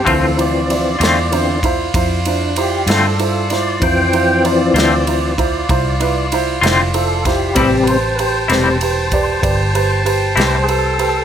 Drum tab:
RD |xxxxxxxxxxxx|xxxxxxxxxxxx|xxxxxxxxxxxx|
SD |---o-----o-o|---o-----o-o|---o-----o--|
BD |o----oo-----|o----oo----o|o----oo-----|